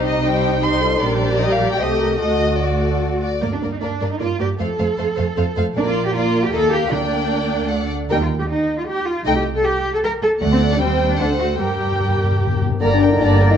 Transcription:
Already playing: double bass section C2, viola section G3 D#4, cello section D#4, violin section G4 C5
0.06 violin section D#5
0.24 viola section G3 D#4, violin section G4 C5 G5
0.62 viola section G3 D#4, violin section G4 C5 C6
0.82 viola section F4, violin section A4
1.01 double bass section A#1, viola section G3 G4, cello section D4, violin section A#4 D5
1.22 violin section C5
1.41 cello section G4, violin section D#5
1.51 violin section F5
1.71 violin section G5
1.80 double bass section C2, viola section A3 G4, violin section A4 C5 D#5
2.01 violin section A#4
2.20 double bass section D2, viola section A3 F#4, cello section F#4, violin section A4 D#5
2.61 viola section A3 F#4, violin section F#4 D5
2.83 violin section A4
3.23 violin section D5
3.42 double bass section G2, cello section A#3, viola section A#3, violin section A#4 D5
3.53 cello section D4
3.62 double bass section G2, viola section A#3, violin section A#4 D5
3.72 cello section D#4
3.81 double bass section G2, viola section A#3, cello section D4, violin section A#4 D5
4.01 double bass section G2, viola section A#3, violin section A#4 D5
4.12 cello section D#4
4.20 double bass section G2, viola section A#3, cello section F4, violin section A#4 D5
4.40 double bass section G2, viola section A#3, cello section G4, violin section A#4 D5
4.59 double bass section F2, viola section A3, cello section A4, violin section C5 F5
4.78 double bass section F2, viola section A3, violin section C5 F5
4.98 double bass section F2, viola section A3, violin section C5 F5
5.17 double bass section F2, viola section A3, violin section C5 F5
5.37 double bass section F2, viola section A3, violin section C5 F5
5.56 double bass section F2, viola section A3, violin section C5 F5
5.75 double bass section A#1, viola section A#3, cello section D4, violin section A#4 D5
5.86 cello section F4
6.05 cello section G4
6.14 viola section A#3, cello section F4, violin section A#4 D5
6.43 cello section G4
6.52 double bass section D#2, viola section A#3, cello section A4, violin section A#4 D#5
6.72 cello section G4, violin section F5
6.91 double bass section D2, timpani D3, viola section A#3, cello section D4, violin section D5 G5
7.70 viola section A3, violin section D5 F#5
8.10 double bass section D#2, viola section G3, cello section D#4, violin section A#4 G5
8.20 cello section F4
8.40 cello section G4
8.48 cello section D#4
8.78 cello section F4
8.87 cello section G4
9.06 cello section F4
9.25 double bass section C2, viola section A3, cello section D#4, violin section D#5 G5
9.36 cello section G4
9.55 cello section A4
9.64 cello section G4
9.93 cello section A4
10.03 cello section A#4
10.22 cello section A4
10.41 double bass section D2, cello section A3, viola section A3, violin section D5 F#5
10.51 cello section C4
10.71 cello section D4
10.80 double bass section D#2, viola section G3, cello section C4, violin section C5 G5
11.09 cello section D4
11.19 double bass section D2, viola section A3, cello section D4, violin section C5 F#5
11.39 cello section F#4
11.59 double bass section G2, timpani G2, viola section G3, cello section G4, violin section A#4 G5
11.69 timpani G2
11.76 timpani G2
11.84 timpani G2
11.92 timpani G2
12.00 timpani G2
12.08 timpani G2
12.16 timpani G2
12.23 timpani G2
12.31 timpani G2
12.39 timpani G2
12.47 timpani G2
12.54 timpani G2
12.61 timpani G2
12.69 timpani G2
12.81 double bass section G1, cello section G2, bassoon D3, french horn section A#3, violin section G4 D5 A#5, flute section A#4, clarinet D5, oboe A#5
12.91 french horn section D4, flute section D5
13.00 violin section A#4 G5
13.11 french horn section D#4, flute section D#5
13.20 double bass section G1, cello section G2, viola section A#3, french horn section D4, violin section G4 D5 A#5, flute section D5
13.40 violin section A#4 G5
13.51 french horn section D#4, flute section D#5

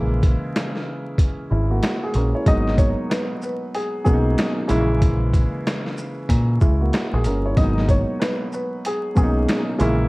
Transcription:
Already playing: picked electric bass A#1, grand piano C#3 E3 G#3 A#3 E4
0.23 kick, closed hi-hat
0.56 snare, closed hi-hat
0.76 snare
1.18 kick, closed hi-hat
1.51 picked electric bass G#1, grand piano G#3 E4
1.70 grand piano A#3 F#4
1.83 snare, closed hi-hat
2.04 grand piano G#4
2.14 picked electric bass A#1, grand piano C#4 A#4, closed hi-hat
2.35 grand piano E4 C#5
2.46 picked electric bass G#1, grand piano B2 F#3 G#3 A#3 D#4, upright piano D#5, kick, closed hi-hat
2.68 snare
2.78 upright piano C#5, kick, closed hi-hat, shaker
3.10 upright piano B4, snare, closed hi-hat
3.42 upright piano B4, shaker
3.74 upright piano G#4, closed hi-hat
4.04 picked electric bass B1, grand piano B2 F#3 G#3 A#3 C#4, upright piano G#4, kick, shaker
4.13 grand piano D#4
4.38 snare, closed hi-hat
4.68 picked electric bass A#1, grand piano C#3 E3 G#3 A#3 E4, closed hi-hat, shaker
5.02 kick, closed hi-hat
5.33 kick, closed hi-hat, shaker
5.67 snare, closed hi-hat
5.86 snare
5.97 shaker
6.29 picked electric bass A#2, kick, closed hi-hat
6.61 picked electric bass C#2, grand piano G#3 E4, kick, shaker
6.81 grand piano A#3 F#4
6.93 snare, closed hi-hat
7.13 picked electric bass A#1, grand piano G#4
7.24 picked electric bass G1, grand piano C#4 A#4, closed hi-hat, shaker
7.46 grand piano E4 C#5
7.56 picked electric bass G#1, grand piano B2 F#3 G#3 A#3 D#4, upright piano D#5, kick, closed hi-hat
7.78 snare
7.89 upright piano C#5, kick, closed hi-hat, shaker
8.20 upright piano B4, snare, closed hi-hat
8.52 upright piano B4, shaker
8.85 upright piano G#4, closed hi-hat
9.15 picked electric bass B1, grand piano B2 F#3 G#3 A#3 C#4, upright piano G#4, kick, shaker
9.23 grand piano D#4
9.49 snare, closed hi-hat
9.78 picked electric bass A#1, grand piano C#3 E3 G#3 A#3 E4, closed hi-hat, shaker

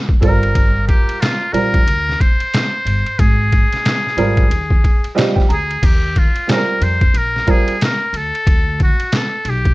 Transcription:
0.09 kick
0.21 upright bass G1, upright piano G3 C4 F4 A4, muted trumpet A#4, kick, ride
0.28 upright piano A#4
0.43 ride
0.55 kick, ride
0.88 muted trumpet G4, kick, ride
1.09 ride
1.21 muted trumpet F4, snare, hi-hat pedal, ride
1.53 upright bass A#1, upright piano G3 C4 F4 A#4, muted trumpet A#4, ride
1.74 kick, ride
1.87 upright bass D2, ride
2.09 snare
2.20 muted trumpet C5, kick, ride
2.40 ride
2.54 snare, hi-hat pedal, ride
2.85 upright bass G1, ride
3.06 ride
3.19 upright bass G#1, muted trumpet G#4, kick, ride
3.52 kick, ride
3.73 snare, ride
3.85 snare, hi-hat pedal, ride
4.07 snare
4.17 upright bass G#1, upright piano G3 C4 F4 A#4, ride
4.37 kick, ride
4.50 upright bass D#2, ride
4.70 kick
4.84 kick, ride
5.04 ride
5.15 upright piano G3 C4 F4 G4 D#5, snare, hi-hat pedal, ride
5.36 upright piano G5, kick, snare
5.49 upright bass D2, upright piano A#5, ride
5.53 muted trumpet G#4
5.71 ride
5.83 upright bass D#2, muted trumpet G4, kick, crash, ride
6.16 muted trumpet F4, kick, ride
6.36 ride
6.47 upright piano G3 C4 F4 G#4, snare, hi-hat pedal, ride
6.52 muted trumpet A#4, upright piano A#4
6.81 upright bass F2, muted trumpet C5, ride
7.01 kick, ride
7.14 upright bass A#1, muted trumpet A#4, ride
7.36 snare
7.47 upright piano G3 C4 F4 A#4, muted trumpet G#4, kick, ride
7.68 ride
7.81 muted trumpet A#4, snare, hi-hat pedal, ride
8.13 upright bass D2, muted trumpet A4, ride
8.35 ride
8.47 upright bass D2, kick, ride
8.80 muted trumpet F#4, kick, ride
9.00 ride
9.12 muted trumpet A4, snare, hi-hat pedal, ride
9.45 upright bass B1, ride
9.49 muted trumpet G4
9.65 kick, ride

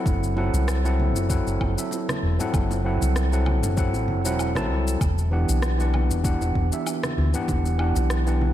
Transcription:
Already playing: tine electric piano F#3 C4 E4 A4 F#5
0.06 fingered electric bass F#1, kick, high bongo, high conga, shaker
0.23 shaker
0.36 tine electric piano F#3 C4 E4 A4 F#5, high bongo
0.54 fingered electric bass C2, high conga, shaker
0.68 cross-stick, low woodblock, shaker
0.84 tine electric piano F#3 C4 E4 A4 F#5, high bongo, shaker
1.00 high conga
1.16 fingered electric bass F#1, high bongo, shaker
1.29 tine electric piano F#3 C4 E4 A4 F#5, kick, shaker
1.47 fingered electric bass F#1, shaker
1.61 fingered electric bass F#1, kick, high bongo, high conga, low woodblock
1.76 tine electric piano F#3 C4 E4 A4 E5, shaker
1.91 high bongo, shaker
2.09 cross-stick, high conga, shaker
2.23 fingered electric bass E1
2.38 tine electric piano F#3 C4 E4 A4 F#5, high bongo, low conga, shaker
2.54 fingered electric bass F#1, kick, high conga, low woodblock, shaker
2.71 high bongo, shaker
2.84 tine electric piano F#3 C4 E4 A4 F#5
3.01 fingered electric bass C2, high conga, shaker
3.15 cross-stick, high bongo, shaker
3.32 tine electric piano F#3 C4 E4 A4 F#5, shaker
3.46 high bongo, high conga, low woodblock
3.63 fingered electric bass F#1, low conga, shaker
3.76 tine electric piano F#3 C4 E4 A4 F#5, kick, shaker
3.93 fingered electric bass A1, high bongo, shaker
4.08 fingered electric bass F#1, high conga, low conga
4.24 fingered electric bass E1, tine electric piano F#3 C4 E4 A4 F#5, high bongo, shaker
4.39 low woodblock, shaker
4.55 fingered electric bass A1, tine electric piano F#3 C4 E4 A4 A5, cross-stick, high conga, shaker
4.70 fingered electric bass C2, high bongo
4.88 shaker
5.01 fingered electric bass E1, kick, high conga, low woodblock, shaker
5.18 shaker
5.31 tine electric piano E3 B3 D4 G4 F#5, high bongo
5.48 fingered electric bass B1, high conga, shaker
5.62 cross-stick, high bongo, shaker
5.78 tine electric piano E3 B3 D4 G4 F#5, shaker
5.93 high conga, low woodblock
6.10 fingered electric bass E1, high bongo, shaker
6.23 tine electric piano E3 B3 D4 G4 F#5, kick, shaker
6.41 fingered electric bass E1, high bongo, shaker
6.55 fingered electric bass E1, kick, high conga
6.71 tine electric piano E3 B3 D4 G4 E5, shaker
6.86 high bongo, low woodblock, shaker
7.03 cross-stick, high conga, shaker
7.18 fingered electric bass D2, high bongo
7.33 tine electric piano E3 B3 D4 G4 F#5, low conga, shaker
7.48 fingered electric bass E1, kick, high conga, shaker
7.66 high bongo, shaker
7.78 tine electric piano E3 B3 D4 G4 F#5, low woodblock
7.96 fingered electric bass B1, high bongo, high conga, shaker
8.10 cross-stick, shaker
8.26 tine electric piano E3 B3 D4 G4 F#5, shaker
8.41 high bongo, high conga

